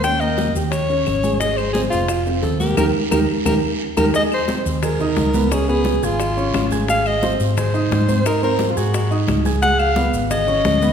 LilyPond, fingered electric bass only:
\new Staff \with { instrumentName = "Fingered electric bass" } { \clef bass \time 4/4 \key ees \dorian \tempo 4 = 175 ees,4. ees,4. aes,,4~ | aes,,4. f,,4. ees,4 | ees,8 r8 ees,8 r8 ees,8 r4 ees,8 | r4. ees,4. des,4~ |
des,4. aes,,4. aes,,4~ | aes,,4. aes,4. aes,4~ | aes,4. aes,4. des,4~ | des,4. aes,,4. d,4 | }